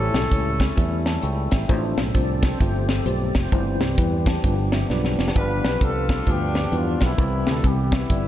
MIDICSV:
0, 0, Header, 1, 6, 480
1, 0, Start_track
1, 0, Tempo, 458365
1, 1769, Time_signature, 4, 2, 24, 8
1, 8669, End_track
2, 0, Start_track
2, 0, Title_t, "Horn section"
2, 0, Program_c, 0, 61
2, 0, Note_on_c, 0, 61, 74
2, 0, Note_on_c, 0, 64, 72
2, 0, Note_on_c, 0, 69, 110
2, 1080, Note_off_c, 0, 61, 0
2, 1080, Note_off_c, 0, 64, 0
2, 1118, Note_off_c, 0, 69, 0
2, 5621, Note_on_c, 0, 62, 68
2, 5623, Note_on_c, 0, 65, 69
2, 5631, Note_on_c, 0, 71, 91
2, 6066, Note_off_c, 0, 71, 0
2, 6075, Note_off_c, 0, 65, 0
2, 6081, Note_off_c, 0, 62, 0
2, 6087, Note_on_c, 0, 65, 73
2, 6093, Note_on_c, 0, 62, 68
2, 6100, Note_on_c, 0, 69, 93
2, 6568, Note_off_c, 0, 62, 0
2, 6574, Note_off_c, 0, 69, 0
2, 6579, Note_on_c, 0, 59, 67
2, 6581, Note_on_c, 0, 62, 67
2, 6599, Note_on_c, 0, 67, 92
2, 7006, Note_off_c, 0, 65, 0
2, 7064, Note_off_c, 0, 67, 0
2, 7079, Note_on_c, 0, 65, 80
2, 7357, Note_off_c, 0, 59, 0
2, 7364, Note_off_c, 0, 65, 0
2, 7366, Note_on_c, 0, 55, 71
2, 7369, Note_on_c, 0, 59, 64
2, 7378, Note_on_c, 0, 64, 91
2, 7493, Note_off_c, 0, 62, 0
2, 7844, Note_off_c, 0, 64, 0
2, 7853, Note_on_c, 0, 69, 78
2, 8016, Note_on_c, 0, 67, 80
2, 8021, Note_off_c, 0, 69, 0
2, 8277, Note_off_c, 0, 55, 0
2, 8279, Note_off_c, 0, 59, 0
2, 8295, Note_on_c, 0, 59, 51
2, 8300, Note_on_c, 0, 55, 59
2, 8313, Note_off_c, 0, 67, 0
2, 8314, Note_on_c, 0, 64, 73
2, 8669, Note_off_c, 0, 55, 0
2, 8669, Note_off_c, 0, 59, 0
2, 8669, Note_off_c, 0, 64, 0
2, 8669, End_track
3, 0, Start_track
3, 0, Title_t, "Tine electric piano"
3, 0, Program_c, 1, 4
3, 0, Note_on_c, 1, 45, 65
3, 0, Note_on_c, 1, 57, 84
3, 0, Note_on_c, 1, 64, 89
3, 0, Note_on_c, 1, 67, 88
3, 0, Note_on_c, 1, 73, 94
3, 178, Note_off_c, 1, 57, 0
3, 180, Note_off_c, 1, 64, 0
3, 180, Note_off_c, 1, 67, 0
3, 182, Note_off_c, 1, 73, 0
3, 328, Note_on_c, 1, 57, 79
3, 329, Note_on_c, 1, 67, 70
3, 331, Note_on_c, 1, 64, 66
3, 338, Note_on_c, 1, 73, 81
3, 590, Note_off_c, 1, 45, 0
3, 655, Note_off_c, 1, 57, 0
3, 656, Note_off_c, 1, 67, 0
3, 657, Note_off_c, 1, 64, 0
3, 660, Note_off_c, 1, 73, 0
3, 798, Note_on_c, 1, 57, 79
3, 801, Note_on_c, 1, 64, 62
3, 805, Note_on_c, 1, 67, 64
3, 809, Note_on_c, 1, 76, 88
3, 1111, Note_on_c, 1, 81, 64
3, 1130, Note_off_c, 1, 57, 0
3, 1132, Note_off_c, 1, 64, 0
3, 1134, Note_off_c, 1, 67, 0
3, 1135, Note_off_c, 1, 76, 0
3, 1278, Note_off_c, 1, 81, 0
3, 1289, Note_on_c, 1, 79, 68
3, 1292, Note_on_c, 1, 85, 58
3, 1299, Note_on_c, 1, 81, 53
3, 1568, Note_off_c, 1, 79, 0
3, 1575, Note_off_c, 1, 85, 0
3, 1579, Note_off_c, 1, 81, 0
3, 1595, Note_on_c, 1, 79, 64
3, 1597, Note_on_c, 1, 76, 64
3, 1763, Note_on_c, 1, 57, 117
3, 1766, Note_on_c, 1, 45, 77
3, 1766, Note_on_c, 1, 62, 112
3, 1769, Note_on_c, 1, 65, 107
3, 1774, Note_on_c, 1, 72, 126
3, 2047, Note_off_c, 1, 79, 0
3, 2051, Note_off_c, 1, 76, 0
3, 2092, Note_off_c, 1, 57, 0
3, 2094, Note_off_c, 1, 62, 0
3, 2095, Note_off_c, 1, 65, 0
3, 2098, Note_off_c, 1, 72, 0
3, 2243, Note_on_c, 1, 57, 74
3, 2246, Note_on_c, 1, 62, 69
3, 2247, Note_on_c, 1, 65, 76
3, 2253, Note_on_c, 1, 72, 84
3, 2505, Note_off_c, 1, 45, 0
3, 2572, Note_off_c, 1, 57, 0
3, 2573, Note_off_c, 1, 62, 0
3, 2574, Note_off_c, 1, 65, 0
3, 2577, Note_off_c, 1, 72, 0
3, 2727, Note_on_c, 1, 57, 71
3, 2729, Note_on_c, 1, 65, 66
3, 2733, Note_on_c, 1, 43, 58
3, 2738, Note_on_c, 1, 67, 67
3, 2739, Note_on_c, 1, 72, 78
3, 3054, Note_off_c, 1, 57, 0
3, 3055, Note_off_c, 1, 65, 0
3, 3059, Note_off_c, 1, 67, 0
3, 3060, Note_off_c, 1, 72, 0
3, 3198, Note_on_c, 1, 57, 79
3, 3202, Note_on_c, 1, 65, 69
3, 3206, Note_on_c, 1, 67, 76
3, 3208, Note_on_c, 1, 72, 84
3, 3468, Note_off_c, 1, 43, 0
3, 3529, Note_off_c, 1, 57, 0
3, 3531, Note_off_c, 1, 65, 0
3, 3533, Note_off_c, 1, 67, 0
3, 3534, Note_off_c, 1, 72, 0
3, 3684, Note_on_c, 1, 55, 111
3, 3687, Note_on_c, 1, 60, 98
3, 3689, Note_on_c, 1, 43, 76
3, 3691, Note_on_c, 1, 64, 100
3, 3695, Note_on_c, 1, 72, 121
3, 4012, Note_off_c, 1, 55, 0
3, 4013, Note_off_c, 1, 60, 0
3, 4015, Note_off_c, 1, 64, 0
3, 4017, Note_off_c, 1, 72, 0
3, 4168, Note_on_c, 1, 55, 80
3, 4170, Note_on_c, 1, 60, 72
3, 4174, Note_on_c, 1, 64, 67
3, 4176, Note_on_c, 1, 71, 85
3, 4425, Note_off_c, 1, 43, 0
3, 4473, Note_on_c, 1, 81, 68
3, 4494, Note_off_c, 1, 55, 0
3, 4495, Note_off_c, 1, 60, 0
3, 4496, Note_off_c, 1, 64, 0
3, 4498, Note_off_c, 1, 71, 0
3, 4637, Note_off_c, 1, 81, 0
3, 4645, Note_on_c, 1, 55, 77
3, 4647, Note_on_c, 1, 62, 60
3, 4650, Note_on_c, 1, 43, 60
3, 4651, Note_on_c, 1, 65, 66
3, 4654, Note_on_c, 1, 71, 70
3, 4654, Note_on_c, 1, 79, 56
3, 4929, Note_off_c, 1, 79, 0
3, 4953, Note_on_c, 1, 76, 58
3, 4972, Note_off_c, 1, 55, 0
3, 4973, Note_off_c, 1, 62, 0
3, 4975, Note_off_c, 1, 65, 0
3, 4977, Note_off_c, 1, 71, 0
3, 5117, Note_off_c, 1, 76, 0
3, 5134, Note_on_c, 1, 55, 83
3, 5134, Note_on_c, 1, 62, 70
3, 5135, Note_on_c, 1, 74, 56
3, 5138, Note_on_c, 1, 65, 67
3, 5139, Note_on_c, 1, 71, 78
3, 5386, Note_off_c, 1, 43, 0
3, 5457, Note_off_c, 1, 55, 0
3, 5457, Note_off_c, 1, 62, 0
3, 5459, Note_off_c, 1, 65, 0
3, 5459, Note_off_c, 1, 71, 0
3, 5578, Note_off_c, 1, 74, 0
3, 5605, Note_on_c, 1, 55, 89
3, 5608, Note_on_c, 1, 62, 82
3, 5612, Note_on_c, 1, 65, 80
3, 5618, Note_on_c, 1, 74, 103
3, 5932, Note_off_c, 1, 55, 0
3, 5934, Note_off_c, 1, 62, 0
3, 5936, Note_off_c, 1, 65, 0
3, 5939, Note_off_c, 1, 74, 0
3, 6092, Note_on_c, 1, 62, 54
3, 6093, Note_on_c, 1, 55, 67
3, 6096, Note_on_c, 1, 65, 60
3, 6099, Note_on_c, 1, 71, 71
3, 6416, Note_off_c, 1, 62, 0
3, 6417, Note_off_c, 1, 55, 0
3, 6418, Note_off_c, 1, 65, 0
3, 6420, Note_off_c, 1, 71, 0
3, 6566, Note_on_c, 1, 55, 61
3, 6566, Note_on_c, 1, 62, 49
3, 6568, Note_on_c, 1, 43, 52
3, 6569, Note_on_c, 1, 65, 50
3, 6573, Note_on_c, 1, 71, 64
3, 6893, Note_off_c, 1, 55, 0
3, 6894, Note_off_c, 1, 62, 0
3, 6895, Note_off_c, 1, 65, 0
3, 6897, Note_off_c, 1, 71, 0
3, 7041, Note_on_c, 1, 55, 68
3, 7044, Note_on_c, 1, 62, 55
3, 7048, Note_on_c, 1, 65, 61
3, 7049, Note_on_c, 1, 71, 73
3, 7306, Note_off_c, 1, 43, 0
3, 7371, Note_off_c, 1, 55, 0
3, 7373, Note_off_c, 1, 62, 0
3, 7375, Note_off_c, 1, 65, 0
3, 7376, Note_off_c, 1, 71, 0
3, 7512, Note_on_c, 1, 55, 92
3, 7515, Note_on_c, 1, 60, 88
3, 7517, Note_on_c, 1, 64, 90
3, 7517, Note_on_c, 1, 71, 97
3, 7518, Note_on_c, 1, 48, 67
3, 7847, Note_off_c, 1, 55, 0
3, 7849, Note_off_c, 1, 60, 0
3, 7850, Note_off_c, 1, 64, 0
3, 7850, Note_off_c, 1, 71, 0
3, 7997, Note_on_c, 1, 55, 70
3, 8002, Note_on_c, 1, 60, 59
3, 8003, Note_on_c, 1, 64, 57
3, 8012, Note_on_c, 1, 71, 72
3, 8262, Note_off_c, 1, 48, 0
3, 8330, Note_off_c, 1, 55, 0
3, 8333, Note_off_c, 1, 60, 0
3, 8334, Note_off_c, 1, 64, 0
3, 8338, Note_off_c, 1, 71, 0
3, 8476, Note_on_c, 1, 55, 54
3, 8481, Note_on_c, 1, 60, 57
3, 8486, Note_on_c, 1, 64, 58
3, 8486, Note_on_c, 1, 74, 64
3, 8669, Note_off_c, 1, 55, 0
3, 8669, Note_off_c, 1, 60, 0
3, 8669, Note_off_c, 1, 64, 0
3, 8669, Note_off_c, 1, 74, 0
3, 8669, End_track
4, 0, Start_track
4, 0, Title_t, "Tonewheel organ"
4, 0, Program_c, 2, 16
4, 0, Note_on_c, 2, 55, 52
4, 0, Note_on_c, 2, 61, 46
4, 0, Note_on_c, 2, 64, 46
4, 0, Note_on_c, 2, 69, 54
4, 1734, Note_off_c, 2, 64, 0
4, 1737, Note_off_c, 2, 55, 0
4, 1737, Note_off_c, 2, 61, 0
4, 1738, Note_off_c, 2, 69, 0
4, 1770, Note_on_c, 2, 60, 62
4, 1770, Note_on_c, 2, 69, 68
4, 1775, Note_on_c, 2, 53, 66
4, 1776, Note_on_c, 2, 62, 61
4, 2258, Note_on_c, 2, 74, 66
4, 2538, Note_off_c, 2, 74, 0
4, 2552, Note_on_c, 2, 72, 64
4, 2709, Note_off_c, 2, 60, 0
4, 2709, Note_off_c, 2, 69, 0
4, 2712, Note_off_c, 2, 53, 0
4, 2712, Note_off_c, 2, 62, 0
4, 2734, Note_on_c, 2, 57, 69
4, 2738, Note_on_c, 2, 60, 66
4, 2739, Note_on_c, 2, 67, 78
4, 2744, Note_on_c, 2, 53, 73
4, 3006, Note_off_c, 2, 72, 0
4, 3031, Note_on_c, 2, 69, 63
4, 3201, Note_off_c, 2, 69, 0
4, 3222, Note_on_c, 2, 74, 63
4, 3500, Note_off_c, 2, 74, 0
4, 3532, Note_on_c, 2, 72, 57
4, 3671, Note_off_c, 2, 57, 0
4, 3673, Note_off_c, 2, 60, 0
4, 3673, Note_off_c, 2, 67, 0
4, 3676, Note_off_c, 2, 53, 0
4, 3718, Note_on_c, 2, 55, 59
4, 3719, Note_on_c, 2, 67, 70
4, 3720, Note_on_c, 2, 52, 63
4, 3721, Note_on_c, 2, 60, 57
4, 3976, Note_off_c, 2, 72, 0
4, 4640, Note_off_c, 2, 67, 0
4, 4643, Note_off_c, 2, 55, 0
4, 4644, Note_off_c, 2, 52, 0
4, 4645, Note_off_c, 2, 60, 0
4, 4647, Note_on_c, 2, 59, 63
4, 4653, Note_on_c, 2, 53, 74
4, 4653, Note_on_c, 2, 67, 80
4, 4658, Note_on_c, 2, 62, 61
4, 7487, Note_off_c, 2, 59, 0
4, 7490, Note_off_c, 2, 53, 0
4, 7490, Note_off_c, 2, 67, 0
4, 7492, Note_off_c, 2, 62, 0
4, 7524, Note_on_c, 2, 52, 52
4, 7525, Note_on_c, 2, 67, 61
4, 7528, Note_on_c, 2, 59, 49
4, 7530, Note_on_c, 2, 48, 55
4, 8669, Note_off_c, 2, 48, 0
4, 8669, Note_off_c, 2, 52, 0
4, 8669, Note_off_c, 2, 59, 0
4, 8669, Note_off_c, 2, 67, 0
4, 8669, End_track
5, 0, Start_track
5, 0, Title_t, "Fingered electric bass"
5, 0, Program_c, 3, 33
5, 0, Note_on_c, 3, 33, 93
5, 105, Note_off_c, 3, 33, 0
5, 146, Note_on_c, 3, 35, 77
5, 301, Note_off_c, 3, 35, 0
5, 329, Note_on_c, 3, 37, 89
5, 737, Note_off_c, 3, 37, 0
5, 814, Note_on_c, 3, 40, 92
5, 1220, Note_off_c, 3, 40, 0
5, 1291, Note_on_c, 3, 37, 79
5, 1545, Note_off_c, 3, 37, 0
5, 1595, Note_on_c, 3, 33, 80
5, 1746, Note_off_c, 3, 33, 0
5, 1772, Note_on_c, 3, 33, 112
5, 2025, Note_off_c, 3, 33, 0
5, 2066, Note_on_c, 3, 35, 86
5, 2220, Note_off_c, 3, 35, 0
5, 2251, Note_on_c, 3, 36, 83
5, 2657, Note_off_c, 3, 36, 0
5, 2726, Note_on_c, 3, 31, 88
5, 3134, Note_off_c, 3, 31, 0
5, 3202, Note_on_c, 3, 35, 85
5, 3459, Note_off_c, 3, 35, 0
5, 3511, Note_on_c, 3, 29, 84
5, 3662, Note_off_c, 3, 29, 0
5, 3686, Note_on_c, 3, 31, 101
5, 3941, Note_off_c, 3, 31, 0
5, 3979, Note_on_c, 3, 36, 75
5, 4135, Note_off_c, 3, 36, 0
5, 4165, Note_on_c, 3, 40, 77
5, 4574, Note_off_c, 3, 40, 0
5, 4650, Note_on_c, 3, 31, 84
5, 5057, Note_off_c, 3, 31, 0
5, 5127, Note_on_c, 3, 35, 76
5, 5382, Note_off_c, 3, 35, 0
5, 5428, Note_on_c, 3, 29, 67
5, 5580, Note_off_c, 3, 29, 0
5, 5608, Note_on_c, 3, 31, 99
5, 5862, Note_off_c, 3, 31, 0
5, 5911, Note_on_c, 3, 35, 80
5, 6062, Note_off_c, 3, 35, 0
5, 6084, Note_on_c, 3, 36, 80
5, 6494, Note_off_c, 3, 36, 0
5, 6567, Note_on_c, 3, 38, 75
5, 6975, Note_off_c, 3, 38, 0
5, 7037, Note_on_c, 3, 40, 82
5, 7297, Note_off_c, 3, 40, 0
5, 7346, Note_on_c, 3, 35, 81
5, 7501, Note_off_c, 3, 35, 0
5, 7520, Note_on_c, 3, 36, 105
5, 7779, Note_off_c, 3, 36, 0
5, 7825, Note_on_c, 3, 38, 70
5, 7980, Note_off_c, 3, 38, 0
5, 8001, Note_on_c, 3, 36, 69
5, 8413, Note_off_c, 3, 36, 0
5, 8481, Note_on_c, 3, 31, 79
5, 8669, Note_off_c, 3, 31, 0
5, 8669, End_track
6, 0, Start_track
6, 0, Title_t, "Drums"
6, 152, Note_on_c, 9, 38, 102
6, 158, Note_on_c, 9, 42, 74
6, 256, Note_off_c, 9, 38, 0
6, 263, Note_off_c, 9, 42, 0
6, 330, Note_on_c, 9, 36, 78
6, 338, Note_on_c, 9, 42, 92
6, 435, Note_off_c, 9, 36, 0
6, 442, Note_off_c, 9, 42, 0
6, 627, Note_on_c, 9, 36, 87
6, 637, Note_on_c, 9, 38, 102
6, 641, Note_on_c, 9, 42, 65
6, 731, Note_off_c, 9, 36, 0
6, 741, Note_off_c, 9, 38, 0
6, 746, Note_off_c, 9, 42, 0
6, 812, Note_on_c, 9, 36, 87
6, 821, Note_on_c, 9, 42, 88
6, 916, Note_off_c, 9, 36, 0
6, 926, Note_off_c, 9, 42, 0
6, 1110, Note_on_c, 9, 38, 88
6, 1116, Note_on_c, 9, 42, 60
6, 1214, Note_off_c, 9, 38, 0
6, 1221, Note_off_c, 9, 42, 0
6, 1284, Note_on_c, 9, 42, 78
6, 1389, Note_off_c, 9, 42, 0
6, 1584, Note_on_c, 9, 42, 57
6, 1589, Note_on_c, 9, 38, 97
6, 1596, Note_on_c, 9, 36, 82
6, 1688, Note_off_c, 9, 42, 0
6, 1693, Note_off_c, 9, 38, 0
6, 1701, Note_off_c, 9, 36, 0
6, 1772, Note_on_c, 9, 36, 90
6, 1773, Note_on_c, 9, 42, 80
6, 1877, Note_off_c, 9, 36, 0
6, 1878, Note_off_c, 9, 42, 0
6, 2070, Note_on_c, 9, 38, 105
6, 2077, Note_on_c, 9, 42, 62
6, 2175, Note_off_c, 9, 38, 0
6, 2182, Note_off_c, 9, 42, 0
6, 2248, Note_on_c, 9, 36, 78
6, 2256, Note_on_c, 9, 42, 93
6, 2353, Note_off_c, 9, 36, 0
6, 2360, Note_off_c, 9, 42, 0
6, 2542, Note_on_c, 9, 36, 88
6, 2545, Note_on_c, 9, 38, 104
6, 2549, Note_on_c, 9, 42, 67
6, 2646, Note_off_c, 9, 36, 0
6, 2649, Note_off_c, 9, 38, 0
6, 2654, Note_off_c, 9, 42, 0
6, 2727, Note_on_c, 9, 36, 89
6, 2730, Note_on_c, 9, 42, 87
6, 2832, Note_off_c, 9, 36, 0
6, 2835, Note_off_c, 9, 42, 0
6, 3025, Note_on_c, 9, 38, 93
6, 3031, Note_on_c, 9, 42, 65
6, 3129, Note_off_c, 9, 38, 0
6, 3136, Note_off_c, 9, 42, 0
6, 3203, Note_on_c, 9, 42, 76
6, 3308, Note_off_c, 9, 42, 0
6, 3502, Note_on_c, 9, 42, 57
6, 3507, Note_on_c, 9, 38, 88
6, 3513, Note_on_c, 9, 36, 75
6, 3607, Note_off_c, 9, 42, 0
6, 3611, Note_off_c, 9, 38, 0
6, 3618, Note_off_c, 9, 36, 0
6, 3689, Note_on_c, 9, 36, 96
6, 3690, Note_on_c, 9, 42, 80
6, 3794, Note_off_c, 9, 36, 0
6, 3795, Note_off_c, 9, 42, 0
6, 3987, Note_on_c, 9, 38, 99
6, 3993, Note_on_c, 9, 42, 68
6, 4091, Note_off_c, 9, 38, 0
6, 4098, Note_off_c, 9, 42, 0
6, 4167, Note_on_c, 9, 36, 79
6, 4172, Note_on_c, 9, 42, 89
6, 4272, Note_off_c, 9, 36, 0
6, 4277, Note_off_c, 9, 42, 0
6, 4463, Note_on_c, 9, 36, 86
6, 4473, Note_on_c, 9, 38, 113
6, 4478, Note_on_c, 9, 42, 61
6, 4568, Note_off_c, 9, 36, 0
6, 4578, Note_off_c, 9, 38, 0
6, 4582, Note_off_c, 9, 42, 0
6, 4649, Note_on_c, 9, 36, 78
6, 4654, Note_on_c, 9, 42, 87
6, 4753, Note_off_c, 9, 36, 0
6, 4758, Note_off_c, 9, 42, 0
6, 4945, Note_on_c, 9, 38, 93
6, 4952, Note_on_c, 9, 42, 62
6, 5050, Note_off_c, 9, 38, 0
6, 5057, Note_off_c, 9, 42, 0
6, 5131, Note_on_c, 9, 38, 52
6, 5236, Note_off_c, 9, 38, 0
6, 5285, Note_on_c, 9, 38, 58
6, 5390, Note_off_c, 9, 38, 0
6, 5433, Note_on_c, 9, 38, 72
6, 5527, Note_off_c, 9, 38, 0
6, 5527, Note_on_c, 9, 38, 81
6, 5611, Note_on_c, 9, 36, 87
6, 5614, Note_on_c, 9, 42, 78
6, 5632, Note_off_c, 9, 38, 0
6, 5715, Note_off_c, 9, 36, 0
6, 5719, Note_off_c, 9, 42, 0
6, 5911, Note_on_c, 9, 38, 103
6, 5918, Note_on_c, 9, 42, 67
6, 6016, Note_off_c, 9, 38, 0
6, 6023, Note_off_c, 9, 42, 0
6, 6086, Note_on_c, 9, 36, 82
6, 6095, Note_on_c, 9, 42, 86
6, 6191, Note_off_c, 9, 36, 0
6, 6200, Note_off_c, 9, 42, 0
6, 6380, Note_on_c, 9, 36, 87
6, 6387, Note_on_c, 9, 38, 110
6, 6392, Note_on_c, 9, 42, 65
6, 6484, Note_off_c, 9, 36, 0
6, 6492, Note_off_c, 9, 38, 0
6, 6497, Note_off_c, 9, 42, 0
6, 6565, Note_on_c, 9, 36, 81
6, 6570, Note_on_c, 9, 42, 87
6, 6669, Note_off_c, 9, 36, 0
6, 6675, Note_off_c, 9, 42, 0
6, 6861, Note_on_c, 9, 38, 94
6, 6868, Note_on_c, 9, 42, 63
6, 6966, Note_off_c, 9, 38, 0
6, 6973, Note_off_c, 9, 42, 0
6, 7039, Note_on_c, 9, 42, 68
6, 7144, Note_off_c, 9, 42, 0
6, 7334, Note_on_c, 9, 42, 58
6, 7339, Note_on_c, 9, 38, 82
6, 7348, Note_on_c, 9, 36, 70
6, 7439, Note_off_c, 9, 42, 0
6, 7444, Note_off_c, 9, 38, 0
6, 7452, Note_off_c, 9, 36, 0
6, 7523, Note_on_c, 9, 36, 97
6, 7524, Note_on_c, 9, 42, 76
6, 7628, Note_off_c, 9, 36, 0
6, 7629, Note_off_c, 9, 42, 0
6, 7821, Note_on_c, 9, 38, 94
6, 7827, Note_on_c, 9, 42, 67
6, 7925, Note_off_c, 9, 38, 0
6, 7932, Note_off_c, 9, 42, 0
6, 8001, Note_on_c, 9, 36, 78
6, 8006, Note_on_c, 9, 42, 80
6, 8105, Note_off_c, 9, 36, 0
6, 8110, Note_off_c, 9, 42, 0
6, 8295, Note_on_c, 9, 36, 83
6, 8301, Note_on_c, 9, 38, 111
6, 8305, Note_on_c, 9, 42, 62
6, 8400, Note_off_c, 9, 36, 0
6, 8405, Note_off_c, 9, 38, 0
6, 8410, Note_off_c, 9, 42, 0
6, 8482, Note_on_c, 9, 36, 90
6, 8485, Note_on_c, 9, 42, 94
6, 8587, Note_off_c, 9, 36, 0
6, 8590, Note_off_c, 9, 42, 0
6, 8669, End_track
0, 0, End_of_file